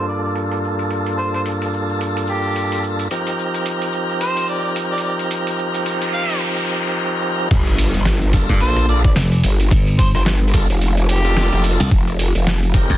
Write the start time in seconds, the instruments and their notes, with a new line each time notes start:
Already playing: tonewheel organ G2 A#3 D4 F4 A4
0.08 harmonica D5, cabasa
0.24 harmonica D5, cabasa
0.35 closed hi-hat, cabasa
0.52 closed hi-hat, cabasa
0.64 cabasa
0.79 closed hi-hat, cabasa
0.91 closed hi-hat, cabasa
1.06 closed hi-hat, cabasa
1.18 harmonica C5, cabasa
1.34 harmonica C5, closed hi-hat, cabasa
1.46 closed hi-hat, cabasa
1.62 closed hi-hat, cabasa
1.74 cabasa
1.89 cabasa
2.01 closed hi-hat, cabasa
2.17 closed hi-hat, cabasa
2.27 harmonica G4, cabasa
2.44 cabasa
2.56 closed hi-hat, cabasa
2.72 closed hi-hat, cabasa
2.84 cabasa
2.99 closed hi-hat, cabasa
3.10 tonewheel organ F3 C4 D#4 G4 A#4, closed hi-hat, cabasa
3.27 closed hi-hat, cabasa
3.39 cabasa
3.54 closed hi-hat, cabasa
3.65 closed hi-hat, cabasa
3.81 closed hi-hat, cabasa
3.93 cabasa
4.10 cabasa
4.21 harmonica C5, closed hi-hat, cabasa
4.36 closed hi-hat, cabasa
4.47 harmonica D5, cabasa
4.64 harmonica D5, cabasa
4.75 closed hi-hat, cabasa
4.91 harmonica D5, cabasa
4.98 closed hi-hat
5.03 harmonica D5, cabasa
5.19 closed hi-hat, cabasa
5.31 closed hi-hat, noise sweep, cabasa
5.47 closed hi-hat, cabasa
5.59 cabasa
5.74 closed hi-hat, cabasa
5.86 closed hi-hat, cabasa
6.02 closed hi-hat, cabasa
6.14 harmonica F5, cabasa
6.29 closed hi-hat, cabasa
7.51 wobble bass G1, kick, open hi-hat, crash, impact, cabasa
7.67 open hi-hat
7.78 open hi-hat, cabasa
7.94 wobble bass G1, open hi-hat, cabasa
8.05 snare, open hi-hat, cabasa
8.22 open hi-hat
8.33 tonewheel organ A#3 D4 F4 A4, kick, open hi-hat, cabasa
8.49 slap bass G2, kick, open hi-hat, cabasa
8.60 wobble bass A#1, harmonica C5, open hi-hat, cabasa
8.76 cross-stick, open hi-hat
8.89 tonewheel organ A#3 D4 F4 A4, harmonica D5, cabasa
9.04 harmonica D5, kick, open hi-hat, cabasa
9.16 slap bass F1, snare, open hi-hat, cabasa
9.32 open hi-hat
9.44 wobble bass G1, open hi-hat, cabasa
9.60 open hi-hat, cabasa
9.71 slap bass G1, kick, open hi-hat, cabasa
9.87 open hi-hat
9.99 harmonica C5, kick, open hi-hat, cabasa
10.15 wobble bass G1, harmonica C5, cross-stick, open hi-hat, cabasa
10.26 snare, open hi-hat, cabasa
10.48 open hi-hat
10.54 tonewheel organ A#3 D4 F4 A4, kick, open hi-hat, cabasa
10.70 wobble bass F1, open hi-hat, cabasa
10.81 open hi-hat, cabasa
10.97 open hi-hat
11.09 harmonica G4, open hi-hat, cabasa
11.25 tonewheel organ A#3 D4 F4 A4, open hi-hat, cabasa
11.37 snare, open hi-hat, cabasa
11.53 wobble bass F1, cross-stick, open hi-hat
11.63 open hi-hat, cabasa
11.80 slap bass C2, open hi-hat, cabasa
11.91 wobble bass F1, kick, open hi-hat, cabasa
12.08 open hi-hat
12.19 open hi-hat, cabasa
12.35 wobble bass F1, open hi-hat, cabasa
12.47 snare, open hi-hat, cabasa
12.63 open hi-hat
12.74 tonewheel organ C4 D#4 G4 A#4, kick, open hi-hat, cabasa
12.90 slap bass F2, kick, open hi-hat, cabasa